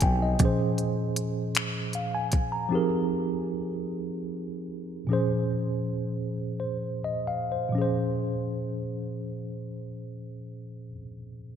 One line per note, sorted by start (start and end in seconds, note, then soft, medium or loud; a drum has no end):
0.00 0.37 B1 medium
0.00 0.35 F3 medium
0.00 0.36 C4 medium
0.00 0.37 D#4 medium
0.00 0.37 G4 medium
0.00 0.38 G#4 medium
0.00 0.38 A#4 medium
0.00 0.21 G5 medium
0.00 0.42 G#5 medium
0.00 kick medium
0.00 closed hi-hat medium
0.22 0.58 D#5 medium
0.39 2.66 A#2 medium
0.39 2.67 F3 medium
0.39 2.68 C#4 medium
0.39 kick medium
0.39 closed hi-hat medium
0.44 2.69 G#4 medium
0.44 2.69 C5 medium
0.78 closed hi-hat soft
1.16 closed hi-hat medium
1.55 finger snap medium
1.55 closed hi-hat medium
1.93 2.13 F5 medium
1.93 closed hi-hat soft
2.15 2.50 G#5 medium
2.32 kick medium
2.32 closed hi-hat medium
2.52 2.88 A#5 medium
2.69 5.03 F3 medium
2.69 5.04 C4 medium
2.69 5.05 D#4 medium
2.69 5.05 G4 medium
2.74 5.06 G#4 medium
2.74 5.06 A#4 medium
5.07 7.68 A#2 medium
5.07 7.70 F3 medium
5.07 7.71 C#4 medium
5.12 7.71 G#4 medium
5.12 6.36 C5 medium
6.60 7.02 C5 soft
7.04 7.26 D#5 medium
7.27 7.49 F5 medium
7.52 7.80 C5 soft
7.69 10.88 A#2 medium
7.69 10.91 F3 medium
7.75 10.94 C#4 medium
7.75 10.97 G#4 soft
7.82 11.00 C5 medium